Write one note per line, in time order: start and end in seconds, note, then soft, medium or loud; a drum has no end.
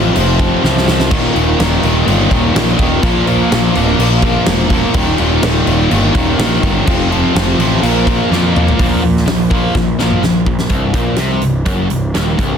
0.00 0.11 A1 medium
0.00 0.15 F2 loud
0.00 0.16 C3 medium
0.00 0.16 F3 loud
0.16 0.53 F1 loud
0.16 0.38 F2 medium
0.16 0.39 C3 medium
0.16 0.39 F3 medium
0.16 crash medium
0.39 0.61 F2 medium
0.39 0.62 C3 medium
0.39 0.63 F3 medium
0.39 kick medium
0.39 crash medium
0.62 1.12 C2 medium
0.62 0.85 F2 medium
0.62 0.85 C3 medium
0.62 0.86 F3 medium
0.62 snare medium
0.77 snare medium
0.86 1.09 F2 medium
0.86 1.10 C3 medium
0.86 1.10 F3 loud
0.86 snare medium
1.00 snare medium
1.09 1.30 D#1 medium
1.09 1.32 D#2 medium
1.09 1.33 A#2 medium
1.09 1.33 D#3 loud
1.09 kick loud
1.09 crash medium
1.34 1.54 D#1 medium
1.34 1.57 D#2 medium
1.34 1.58 A#2 medium
1.34 1.59 D#3 loud
1.34 crash medium
1.58 1.78 D#1 medium
1.58 1.81 D#2 medium
1.58 1.82 A#2 loud
1.58 1.83 D#3 loud
1.58 snare loud
1.58 crash medium
1.83 2.02 D#1 medium
1.83 2.05 D#2 medium
1.83 2.06 A#2 loud
1.83 2.06 D#3 loud
1.83 crash medium
2.06 2.26 G1 medium
2.06 2.28 D#2 loud
2.06 2.29 A#2 medium
2.06 2.30 D#3 loud
2.06 crash medium
2.30 2.50 D#1 medium
2.30 2.52 D#2 medium
2.30 2.53 A#2 medium
2.30 2.53 D#3 medium
2.30 kick medium
2.30 crash medium
2.53 2.74 A#1 loud
2.53 2.75 D#2 medium
2.53 2.76 A#2 medium
2.53 2.77 D#3 loud
2.53 snare loud
2.53 crash medium
2.76 2.98 D#1 medium
2.76 3.01 D#2 medium
2.76 3.00 A#2 medium
2.76 3.01 D#3 loud
2.76 kick medium
2.76 crash medium
3.01 3.40 A#1 loud
3.01 3.25 A#2 medium
3.01 3.27 F3 loud
3.01 3.27 A#3 loud
3.01 kick loud
3.01 crash medium
3.27 3.50 A#2 medium
3.27 3.51 F3 loud
3.27 3.52 A#3 medium
3.27 crash medium
3.51 3.70 A#1 medium
3.51 3.74 A#2 medium
3.51 3.74 F3 medium
3.51 3.76 A#3 loud
3.51 snare loud
3.51 crash medium
3.75 3.94 D1 medium
3.75 3.98 A#2 medium
3.75 3.99 F3 loud
3.75 4.00 A#3 loud
3.75 crash medium
3.99 4.36 A#1 medium
3.99 4.22 A#2 medium
3.99 4.23 F3 medium
3.99 4.23 A#3 loud
3.99 crash medium
4.22 4.47 A#2 medium
4.22 4.48 F3 loud
4.22 4.48 A#3 medium
4.22 kick medium
4.22 crash medium
4.46 4.84 E1 loud
4.46 4.71 A#2 loud
4.46 4.72 F3 loud
4.46 4.73 A#3 loud
4.46 snare loud
4.46 crash medium
4.70 4.94 A#2 loud
4.70 4.95 F3 loud
4.70 kick medium
4.70 crash medium
4.74 4.95 A#3 loud
4.94 5.13 D#1 loud
4.94 5.19 D#2 medium
4.94 5.20 A#2 loud
4.94 5.20 D#3 loud
4.94 kick loud
4.94 crash medium
5.18 5.38 D#1 medium
5.18 5.41 D#2 medium
5.18 5.42 A#2 medium
5.18 5.42 D#3 medium
5.18 crash medium
5.42 5.61 D#1 medium
5.42 5.65 D#2 medium
5.42 5.66 A#2 loud
5.42 5.66 D#3 loud
5.42 snare loud
5.42 crash medium
5.66 5.86 D#1 medium
5.66 5.89 D#2 medium
5.66 5.90 A#2 loud
5.66 5.90 D#3 loud
5.66 crash medium
5.90 6.10 G1 loud
5.90 6.14 D#2 medium
5.90 6.14 A#2 medium
5.90 6.14 D#3 medium
5.90 crash medium
6.15 6.33 D#1 loud
6.15 6.37 D#2 medium
6.15 6.38 A#2 medium
6.15 6.38 D#3 medium
6.15 kick medium
6.15 crash medium
6.39 6.57 A#1 medium
6.39 6.61 D#2 medium
6.39 6.61 A#2 loud
6.39 6.62 D#3 loud
6.39 snare loud
6.39 crash medium
6.62 6.82 G1 medium
6.62 6.85 D#2 medium
6.62 6.85 A#2 medium
6.62 6.86 D#3 loud
6.62 kick medium
6.62 crash medium
6.85 7.24 F1 medium
6.85 7.08 F2 medium
6.85 7.09 C3 loud
6.85 7.09 F3 loud
6.85 kick loud
6.85 crash medium
7.10 7.33 F2 medium
7.10 7.34 C3 medium
7.10 7.35 F3 medium
7.10 crash medium
7.35 7.53 F1 medium
7.35 7.58 F2 loud
7.35 7.58 C3 medium
7.35 7.58 F3 loud
7.35 snare loud
7.35 crash medium
7.59 7.77 A1 medium
7.59 7.82 F2 medium
7.59 7.82 C3 medium
7.59 7.82 F3 medium
7.59 crash medium
7.82 8.20 A#1 loud
7.82 8.06 A#2 loud
7.82 8.06 F3 medium
7.82 8.07 A#3 loud
7.82 crash medium
8.07 8.30 A#2 medium
8.07 8.30 F3 medium
8.07 8.31 A#3 medium
8.07 kick medium
8.07 crash medium
8.30 8.68 F2 medium
8.30 8.54 A#2 medium
8.30 8.55 F3 loud
8.30 8.56 A#3 loud
8.30 snare medium
8.55 8.78 A#2 medium
8.55 8.78 F3 loud
8.55 8.79 A#3 loud
8.55 mid tom medium
8.68 floor tom loud
8.79 8.99 A#1 medium
8.79 9.02 A#2 medium
8.79 9.02 F3 medium
8.79 9.02 A#3 medium
8.79 kick loud
8.79 open hi-hat medium
9.03 9.25 A#2 medium
9.03 9.24 A#2 medium
9.03 9.25 F3 medium
9.17 snare soft
9.26 9.67 A#1 medium
9.26 9.48 A#2 medium
9.26 9.48 F3 medium
9.26 snare loud
9.26 open hi-hat medium
9.50 9.73 A#2 loud
9.50 9.74 F3 loud
9.50 9.74 A#3 loud
9.50 kick medium
9.75 10.15 A#1 loud
9.75 9.97 A#2 medium
9.75 9.97 F3 medium
9.75 kick loud
9.75 snare medium
9.99 10.22 A#2 medium
9.99 10.22 F3 medium
9.99 10.22 A#3 loud
9.99 snare medium
10.11 mid tom medium
10.22 10.43 A#1 medium
10.22 10.45 A#2 medium
10.22 10.45 F3 medium
10.22 snare medium
10.46 10.67 A#1 medium
10.46 10.69 A#2 medium
10.46 10.69 F3 medium
10.46 kick medium
10.59 snare medium
10.69 10.93 C1 medium
10.69 10.94 C2 medium
10.69 kick loud
10.69 closed hi-hat medium
10.93 11.17 A#1 medium
10.93 11.18 A#2 medium
10.93 kick loud
10.93 closed hi-hat medium
11.16 11.41 C2 medium
11.16 11.42 C3 medium
11.16 snare loud
11.16 closed hi-hat medium
11.41 11.65 C1 medium
11.41 11.62 C2 medium
11.41 closed hi-hat medium
11.65 11.89 F#1 medium
11.65 11.89 F#2 medium
11.65 kick loud
11.65 closed hi-hat medium
11.90 12.14 C1 medium
11.90 12.10 C2 medium
11.90 closed hi-hat medium
12.15 12.38 D#1 medium
12.15 12.37 D#2 loud
12.15 snare medium
12.15 closed hi-hat medium
12.37 12.58 C1 medium
12.37 12.58 C2 loud
12.37 kick medium
12.37 closed hi-hat medium